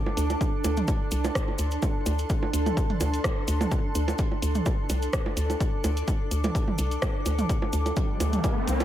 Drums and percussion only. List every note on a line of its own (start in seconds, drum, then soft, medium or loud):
0.06 low bongo medium
0.17 closed hi-hat medium
0.17 cabasa medium
0.30 closed hi-hat soft
0.30 low bongo soft
0.30 cabasa soft
0.41 kick loud
0.41 closed hi-hat soft
0.41 cabasa medium
0.64 closed hi-hat medium
0.64 low bongo medium
0.64 cabasa medium
0.77 closed hi-hat soft
0.77 mid tom medium
0.77 cabasa soft
0.88 kick loud
0.88 closed hi-hat soft
0.88 low bongo soft
0.88 cabasa medium
1.11 closed hi-hat medium
1.11 cabasa loud
1.24 closed hi-hat soft
1.24 low bongo medium
1.24 cabasa soft
1.35 kick loud
1.35 cross-stick loud
1.35 closed hi-hat soft
1.35 cabasa soft
1.48 low bongo soft
1.58 closed hi-hat medium
1.58 cabasa loud
1.71 closed hi-hat soft
1.71 cabasa soft
1.82 kick loud
1.82 closed hi-hat soft
1.82 low bongo medium
1.82 cabasa medium
2.06 closed hi-hat medium
2.06 low bongo soft
2.06 cabasa loud
2.19 closed hi-hat soft
2.19 cabasa soft
2.30 kick loud
2.30 closed hi-hat soft
2.30 cabasa medium
2.43 low bongo medium
2.53 closed hi-hat medium
2.53 cabasa medium
2.66 closed hi-hat soft
2.66 mid tom medium
2.66 low bongo soft
2.66 cabasa soft
2.77 kick loud
2.77 closed hi-hat soft
2.77 cabasa medium
2.90 closed hi-hat soft
2.90 mid tom medium
3.00 closed hi-hat medium
3.00 low bongo medium
3.00 cabasa medium
3.14 closed hi-hat soft
3.14 cabasa soft
3.24 kick loud
3.24 cross-stick loud
3.24 closed hi-hat soft
3.24 low bongo soft
3.24 cabasa medium
3.48 closed hi-hat loud
3.48 cabasa medium
3.61 closed hi-hat soft
3.61 mid tom medium
3.61 low bongo medium
3.61 cabasa soft
3.71 kick loud
3.71 closed hi-hat soft
3.71 low bongo soft
3.71 cabasa soft
3.95 closed hi-hat medium
3.95 cabasa medium
4.08 closed hi-hat soft
4.08 low bongo medium
4.08 cabasa soft
4.18 kick loud
4.18 closed hi-hat medium
4.18 cabasa soft
4.32 low bongo soft
4.42 closed hi-hat medium
4.42 cabasa medium
4.55 closed hi-hat soft
4.55 mid tom medium
4.55 cabasa soft
4.66 kick loud
4.66 closed hi-hat soft
4.66 low bongo medium
4.66 cabasa medium
4.89 closed hi-hat medium
4.89 low bongo soft
4.89 cabasa medium
5.02 closed hi-hat soft
5.02 cabasa soft
5.13 kick loud
5.13 cross-stick loud
5.13 closed hi-hat soft
5.13 cabasa medium
5.26 low bongo medium
5.37 closed hi-hat medium
5.37 cabasa medium
5.50 closed hi-hat soft
5.50 low bongo soft
5.50 cabasa soft
5.60 kick loud
5.60 closed hi-hat medium
5.60 cabasa soft
5.84 closed hi-hat medium
5.84 low bongo medium
5.84 cabasa medium
5.97 closed hi-hat soft
5.97 cabasa soft
6.08 kick loud
6.08 closed hi-hat medium
6.08 low bongo soft
6.08 cabasa medium
6.31 closed hi-hat medium
6.31 cabasa medium
6.44 closed hi-hat soft
6.44 mid tom medium
6.44 low bongo medium
6.44 cabasa soft
6.55 kick loud
6.55 closed hi-hat soft
6.55 cabasa soft
6.68 mid tom medium
6.68 low bongo soft
6.78 closed hi-hat medium
6.78 cabasa medium
6.91 closed hi-hat soft
6.91 cabasa soft
7.02 kick loud
7.02 cross-stick loud
7.02 closed hi-hat soft
7.02 low bongo medium
7.02 cabasa soft
7.26 closed hi-hat medium
7.26 low bongo soft
7.26 cabasa medium
7.38 closed hi-hat soft
7.38 mid tom medium
7.38 cabasa soft
7.49 kick loud
7.49 closed hi-hat medium
7.49 cabasa medium
7.62 low bongo medium
7.73 closed hi-hat medium
7.73 cabasa medium
7.86 closed hi-hat soft
7.86 low bongo soft
7.86 cabasa soft
7.96 kick loud
7.96 closed hi-hat medium
7.96 cabasa soft
8.20 closed hi-hat medium
8.20 low bongo medium
8.20 cabasa medium
8.33 closed hi-hat soft
8.33 mid tom medium
8.33 cabasa soft
8.44 kick loud
8.44 closed hi-hat medium
8.44 low bongo soft
8.44 cabasa medium
8.67 closed hi-hat medium
8.67 cabasa medium
8.80 closed hi-hat soft
8.80 low bongo medium
8.80 cabasa soft